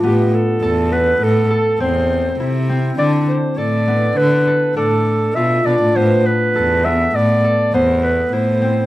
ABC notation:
X:1
M:5/4
L:1/16
Q:1/4=101
K:Am
V:1 name="Clarinet"
G2 A4 B2 A4 c6 z2 | d2 c2 d4 B4 A4 e2 d2 | c2 B4 e2 d4 c2 B2 c4 |]
V:2 name="Harp"
B,4 A2 B,4 A2 C4 E2 C2 | D4 A2 B,4 A2 D4 F2 D2 | B,4 A2 B,4 A2 B,4 E2 C2 |]
V:3 name="Cello" clef=bass
A,,2 z2 E,,4 A,,2 z2 E,,4 C,4 | D,2 z2 A,,4 D,2 z2 A,,4 B,,2 B,, A,, | A,,2 z2 E,,4 A,,2 z2 E,,4 A,,4 |]